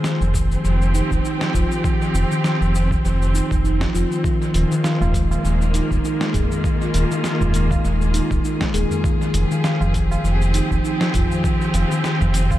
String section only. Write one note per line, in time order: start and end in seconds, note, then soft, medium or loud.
0.00 4.24 F3 medium
0.00 0.78 A#3 medium
0.00 6.13 C4 medium
0.00 0.60 F4 medium
0.00 4.24 G#4 medium
0.53 4.24 G4 medium
4.25 9.05 D#3 medium
4.52 12.59 G#4 medium
4.57 10.72 A#3 medium
4.78 10.52 F4 medium
9.05 12.59 F3 medium
9.32 12.59 C4 medium
9.39 12.59 G4 medium